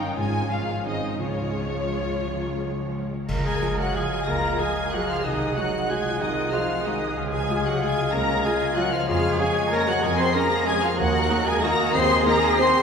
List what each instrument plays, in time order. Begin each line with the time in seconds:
Already playing: double bass section G1, cello section G2, harp G2 A#3 C#4 D#4 A#4, french horn section D#3 C#4, viola section D#3 D#4, violin section C#5 G5
0.03 harp G3
0.17 double bass section G#1, harp G#2, timpani G#2, cello section G#2, french horn section F3, viola section G#3 F4, violin section C#5 G#5
0.34 harp C#4
0.50 viola section G#3 F4, harp F4, violin section C#5 F5
0.68 harp C#5
0.84 double bass section G#1, cello section G#2, harp G#2, french horn section D#3 C4, viola section G#3 D#4, violin section C5 D#5
1.02 harp G#4 C5
1.18 double bass section C#2, timpani C#3, cello section C#3, harp C#3, french horn section F3 C#4, viola section G#3 F4, violin section C#5
1.36 harp F4
1.54 cello section F3, harp G#4
1.72 harp C#5
1.90 cello section D#3, harp F4
2.08 cello section F3, harp G#3
2.24 harp C#3
2.41 cello section F#3, harp F4
2.59 harp G#4
2.77 cello section F3, harp C#5
2.94 harp F4
3.12 cello section D#3, harp G#3
3.28 double bass section C#2, harp C#3, bassoon G#3, cello section A#4, oboe F5, concert bass drum, crash
3.44 french horn section G#3, harp F4, clarinet G#4, violin section G#5 G#6, flute section G#5
3.61 viola section F3 F4, harp G#4
3.78 french horn section F#3, clarinet F#4, harp C#5, violin section F#5 F#6, flute section F#5
3.95 viola section F3 F4, french horn section G#3, harp F4, clarinet G#4, cello section G#4, violin section G#5 G#6, flute section G#5
4.12 harp G#3
4.28 double bass section C#2, harp C#3, french horn section A#3, cello section F4, clarinet A#4, flute section A#5, violin section A#5 A#6
4.43 harp F4
4.59 viola section F3 F4, french horn section G#3, harp G#4, clarinet G#4, cello section G#4, violin section G#5 G#6, flute section G#5
4.77 harp C#5
4.93 viola section F3 F4, french horn section F#3, harp F4, clarinet F#4, violin section F#5 F#6, flute section F#5
5.09 french horn section F3, harp G#3, clarinet F4, flute section F5, violin section F5 F6
5.24 double bass section C2, harp C3, french horn section D#3, bassoon G#3, clarinet D#4, violin section D#5 D#6, flute section D#5, oboe F#5
5.40 harp F#4
5.56 french horn section F#3, viola section G#3 F#4, cello section D#4, clarinet F#4, harp G#4, violin section F#5 F#6, flute section F#5
5.73 harp D#5
5.89 viola section G#3 F#4, french horn section G#3, cello section F4, harp F#4, clarinet G#4, flute section G#5, violin section G#5 G#6
6.06 harp C4
6.20 double bass section C2, harp C3, french horn section D#3, clarinet D#4, flute section D#5, violin section D#5 D#6
6.36 harp F#4
6.52 french horn section F3, viola section G#3 F#4, cello section D#4, clarinet F4, harp G#4, violin section F5 F6, flute section F5
6.69 harp D#5
6.85 french horn section D#3, viola section G#3 F#4, clarinet D#4, harp F#4, cello section G#4, violin section D#5 D#6, flute section D#5
7.02 harp C4
7.17 double bass section C#2, harp C#3, bassoon G#3, oboe F5
7.32 french horn section G#3, harp F4, clarinet G#4, violin section G#5 G#6, flute section G#5
7.49 viola section G#3 F4, harp G#4
7.65 french horn section F#3, clarinet F#4, harp C#5, violin section F#5 F#6, flute section F#5
7.81 french horn section G#3, viola section G#3 F4, cello section F4, harp F4, clarinet G#4, violin section G#5 G#6, flute section G#5
7.98 harp G#3
8.12 double bass section C#2, harp C#3, french horn section A#3, cello section C#4, clarinet A#4, violin section A#5 A#6, flute section A#5
8.28 harp F4
8.43 french horn section G#3, viola section G#3 F4, cello section F4, clarinet G#4, violin section G#5 G#6, flute section G#5
8.60 harp C#5
8.75 french horn section F#3, viola section G#3 F4, harp F4, clarinet F#4, violin section F#5 F#6, flute section F#5
8.92 french horn section F3, harp G#3, clarinet F4, flute section F5, violin section F5 F6
9.08 double bass section F2, french horn section F3, harp F3, bassoon G#3, clarinet F4, cello section G#4, oboe C#5, flute section F5, violin section F5 F6
9.23 harp C#4
9.39 french horn section G#3, viola section C#4 G#4, harp G#4, clarinet G#4, flute section G#5, violin section G#5 G#6
9.56 harp C#5
9.72 french horn section A#3, harp C#4, viola section C#4 G#4, clarinet A#4, cello section A#4, flute section A#5, violin section A#5 A#6
9.88 french horn section F#3, harp F4, clarinet F#4, flute section F#5, violin section F#5 F#6
10.01 double bass section F2, harp F3, french horn section G#3, clarinet G#4, flute section G#5, violin section G#5 G#6
10.18 french horn section C4, clarinet C5, flute section C6, violin section C6 C7
10.33 french horn section A#3, viola section C#4 G#4, cello section G#4, harp G#4, clarinet A#4, violin section A#5 A#6, flute section A#5
10.51 harp C#5
10.66 french horn section G#3, harp C#4, viola section C#4 G#4, clarinet G#4, flute section G#5, violin section G#5 G#6
10.82 french horn section F3, clarinet F4, harp F4, violin section F5 F6, flute section F5
10.98 double bass section D#2, harp D#3, french horn section F#3, bassoon A#3, clarinet F#4, cello section A#4, oboe D#5, violin section F#5 F#6, flute section F#5
11.14 harp A#3
11.30 viola section A#3 D#4, harp F#4
11.45 french horn section G#3, clarinet G#4, harp D#5, violin section G#5 G#6, flute section G#5
11.63 french horn section A#3, harp A#3, viola section A#3 D#4, cello section F#4, clarinet A#4, violin section A#5 A#6, flute section A#5
11.79 harp D#4
11.93 double bass section D#2, harp D#3, french horn section C4, cello section G#4, clarinet C5, flute section C6, violin section C6 C7
12.10 harp A#3
12.25 french horn section A#3, viola section A#3 D#4, harp F#4, clarinet A#4, violin section A#5 A#6, flute section A#5
12.42 harp D#5
12.58 viola section A#3 D#4, harp A#3, french horn section C4, clarinet C5, violin section C6 C7, flute section C6
12.74 harp D#4